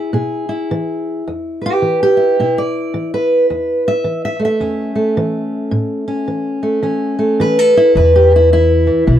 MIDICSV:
0, 0, Header, 1, 3, 480
1, 0, Start_track
1, 0, Tempo, 558140
1, 1088, Time_signature, 4, 2, 24, 8
1, 7907, End_track
2, 0, Start_track
2, 0, Title_t, "Steel-string acoustic guitar"
2, 0, Program_c, 0, 25
2, 0, Note_on_c, 0, 52, 64
2, 0, Note_on_c, 0, 64, 43
2, 0, Note_on_c, 0, 68, 49
2, 88, Note_off_c, 0, 52, 0
2, 112, Note_on_c, 0, 47, 73
2, 116, Note_off_c, 0, 68, 0
2, 120, Note_on_c, 0, 68, 50
2, 417, Note_off_c, 0, 64, 0
2, 420, Note_on_c, 0, 64, 50
2, 562, Note_off_c, 0, 47, 0
2, 611, Note_on_c, 0, 52, 72
2, 1052, Note_off_c, 0, 52, 0
2, 1061, Note_off_c, 0, 68, 0
2, 1096, Note_on_c, 0, 40, 76
2, 1389, Note_on_c, 0, 71, 53
2, 1426, Note_on_c, 0, 67, 91
2, 1534, Note_off_c, 0, 40, 0
2, 1566, Note_on_c, 0, 52, 57
2, 1733, Note_off_c, 0, 67, 0
2, 1743, Note_on_c, 0, 67, 83
2, 1863, Note_off_c, 0, 64, 0
2, 1866, Note_on_c, 0, 64, 49
2, 2009, Note_off_c, 0, 52, 0
2, 2060, Note_on_c, 0, 47, 67
2, 2061, Note_off_c, 0, 64, 0
2, 2065, Note_on_c, 0, 64, 51
2, 2213, Note_off_c, 0, 71, 0
2, 2216, Note_off_c, 0, 67, 0
2, 2220, Note_on_c, 0, 74, 77
2, 2497, Note_off_c, 0, 47, 0
2, 2528, Note_on_c, 0, 52, 68
2, 2694, Note_off_c, 0, 74, 0
2, 2699, Note_on_c, 0, 71, 81
2, 2970, Note_off_c, 0, 52, 0
2, 3012, Note_on_c, 0, 40, 72
2, 3331, Note_off_c, 0, 71, 0
2, 3335, Note_on_c, 0, 76, 85
2, 3453, Note_off_c, 0, 40, 0
2, 3476, Note_on_c, 0, 52, 60
2, 3644, Note_off_c, 0, 76, 0
2, 3654, Note_on_c, 0, 76, 81
2, 3776, Note_off_c, 0, 64, 0
2, 3779, Note_on_c, 0, 57, 44
2, 3811, Note_off_c, 0, 76, 0
2, 3825, Note_on_c, 0, 76, 78
2, 3925, Note_off_c, 0, 52, 0
2, 3958, Note_on_c, 0, 40, 66
2, 3964, Note_on_c, 0, 61, 47
2, 4250, Note_off_c, 0, 57, 0
2, 4260, Note_on_c, 0, 57, 43
2, 4406, Note_off_c, 0, 40, 0
2, 4447, Note_on_c, 0, 52, 70
2, 4890, Note_off_c, 0, 52, 0
2, 4913, Note_on_c, 0, 45, 80
2, 5216, Note_off_c, 0, 61, 0
2, 5226, Note_on_c, 0, 61, 52
2, 5363, Note_off_c, 0, 45, 0
2, 5397, Note_on_c, 0, 52, 56
2, 5689, Note_off_c, 0, 57, 0
2, 5700, Note_on_c, 0, 57, 43
2, 5737, Note_off_c, 0, 76, 0
2, 5845, Note_off_c, 0, 52, 0
2, 5865, Note_off_c, 0, 61, 0
2, 5870, Note_on_c, 0, 52, 62
2, 5875, Note_on_c, 0, 61, 52
2, 6170, Note_off_c, 0, 57, 0
2, 6181, Note_on_c, 0, 57, 49
2, 6322, Note_off_c, 0, 52, 0
2, 6362, Note_on_c, 0, 52, 72
2, 6373, Note_on_c, 0, 71, 100
2, 6525, Note_off_c, 0, 61, 0
2, 6525, Note_on_c, 0, 69, 79
2, 6681, Note_off_c, 0, 57, 0
2, 6685, Note_on_c, 0, 64, 88
2, 6808, Note_off_c, 0, 52, 0
2, 6840, Note_off_c, 0, 71, 0
2, 6847, Note_off_c, 0, 64, 0
2, 6847, Note_off_c, 0, 69, 0
2, 6851, Note_on_c, 0, 40, 76
2, 6852, Note_on_c, 0, 71, 87
2, 6861, Note_on_c, 0, 52, 54
2, 6871, Note_on_c, 0, 64, 54
2, 7011, Note_off_c, 0, 64, 0
2, 7014, Note_on_c, 0, 67, 84
2, 7147, Note_off_c, 0, 52, 0
2, 7151, Note_on_c, 0, 52, 47
2, 7171, Note_off_c, 0, 67, 0
2, 7188, Note_on_c, 0, 64, 91
2, 7292, Note_off_c, 0, 40, 0
2, 7325, Note_off_c, 0, 64, 0
2, 7327, Note_off_c, 0, 52, 0
2, 7330, Note_on_c, 0, 52, 67
2, 7335, Note_on_c, 0, 64, 102
2, 7490, Note_off_c, 0, 71, 0
2, 7617, Note_off_c, 0, 52, 0
2, 7627, Note_on_c, 0, 52, 45
2, 7800, Note_on_c, 0, 47, 70
2, 7802, Note_off_c, 0, 52, 0
2, 7805, Note_on_c, 0, 52, 46
2, 7907, Note_off_c, 0, 47, 0
2, 7907, Note_off_c, 0, 52, 0
2, 7907, Note_off_c, 0, 64, 0
2, 7907, End_track
3, 0, Start_track
3, 0, Title_t, "Upright bass"
3, 0, Program_c, 1, 32
3, 6839, Note_on_c, 1, 40, 80
3, 7633, Note_off_c, 1, 40, 0
3, 7804, Note_on_c, 1, 35, 81
3, 7907, Note_off_c, 1, 35, 0
3, 7907, End_track
0, 0, End_of_file